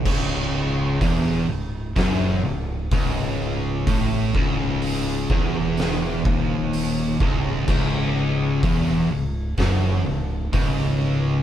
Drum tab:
CC |x-------|--------|x-------|
HH |--o-o-o-|o-o-o-o-|--o-o-o-|
SD |----o---|----o---|----o---|
BD |o-o-o-o-|oo-o-o-o|o-o-o-o-|